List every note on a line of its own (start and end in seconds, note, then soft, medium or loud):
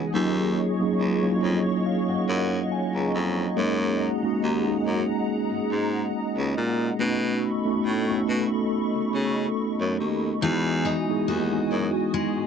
0.00 3.53 G#4 medium
0.00 10.38 D#5 medium
0.00 0.10 F#5 medium
0.00 0.10 G#5 medium
0.13 0.65 D#2 loud
0.13 0.63 F#3 medium
0.13 0.64 A#3 medium
0.13 0.64 C#4 medium
0.13 0.64 D#4 medium
0.13 0.65 F4 medium
0.13 3.53 C#5 medium
0.13 3.53 C#6 medium
0.79 1.12 F#3 medium
0.79 1.12 A#3 medium
0.79 1.12 C#4 medium
0.79 1.13 D#4 medium
0.79 1.13 G#4 medium
1.00 1.33 C#2 medium
1.22 2.54 F#3 medium
1.22 2.54 A#3 medium
1.22 2.54 C#4 medium
1.22 2.55 D#4 medium
1.22 1.30 E4 medium
1.31 2.58 F4 medium
1.43 1.60 F2 medium
1.43 1.83 C#5 medium
1.86 2.07 F5 medium
2.09 2.17 F#2 soft
2.09 2.27 F#5 medium
2.28 2.61 F#2 medium
2.28 2.69 F#5 medium
2.72 2.93 G#5 medium
2.95 3.10 C#2 medium
2.95 3.53 A#5 medium
3.14 3.47 F2 medium
3.56 4.08 F#2 loud
3.56 4.06 G#3 medium
3.56 4.07 A#3 medium
3.56 4.07 C#4 medium
3.56 4.07 D#4 medium
3.56 4.08 F#4 medium
3.56 6.96 G#4 medium
3.56 6.96 F#5 medium
3.56 6.96 A#5 medium
4.23 4.55 G#3 medium
4.23 4.55 A#3 medium
4.23 4.55 C#4 medium
4.23 4.56 D#4 medium
4.23 4.56 F#4 medium
4.43 4.76 D#2 medium
4.65 5.96 G#3 medium
4.65 5.97 A#3 medium
4.65 5.97 C#4 medium
4.65 5.97 D#4 medium
4.65 5.98 G#4 medium
4.86 5.03 F#2 medium
5.52 5.59 G#2 soft
5.72 6.04 G#2 medium
6.37 6.52 C#2 medium
6.57 6.90 A#2 medium
6.99 7.51 B2 loud
6.99 7.49 A3 medium
6.99 7.50 B3 medium
6.99 7.50 C#4 medium
6.99 7.50 D#4 medium
6.99 7.50 F#4 medium
6.99 10.39 A4 medium
6.99 10.39 B5 medium
6.99 10.39 C#6 medium
7.65 7.97 A3 medium
7.65 7.98 B3 medium
7.65 7.98 C#4 medium
7.65 7.98 D#4 medium
7.65 7.99 F#4 medium
7.86 8.18 A2 medium
8.08 9.39 A3 medium
8.08 9.40 B3 medium
8.08 9.40 C#4 medium
8.08 9.40 D#4 medium
8.08 9.41 F#4 medium
8.29 8.46 B2 medium
8.94 9.02 C#3 soft
9.14 9.47 C#3 medium
9.80 9.95 F#2 medium
10.00 10.33 D#2 medium
10.42 10.93 E2 loud
10.42 12.47 E3 medium
10.42 10.92 G#3 medium
10.42 10.92 B3 medium
10.42 10.93 D#4 medium
10.42 10.93 E4 medium
10.42 12.47 F#4 medium
10.42 10.93 F#4 medium
10.42 12.47 D#5 medium
10.42 12.47 G#5 medium
10.42 12.47 D#6 medium
10.85 12.47 D#4 medium
11.08 11.40 G#3 medium
11.08 11.41 B3 medium
11.08 11.41 D#4 medium
11.08 11.41 E4 medium
11.08 11.42 G#4 medium
11.28 11.61 D#2 medium
11.28 12.47 F#4 medium
11.51 12.47 G#3 medium
11.51 12.47 B3 medium
11.51 12.47 D#4 medium
11.51 12.47 E4 medium
11.51 12.47 F#4 medium
11.71 11.89 F#2 medium
12.14 12.47 G#3 medium
12.37 12.45 G#2 soft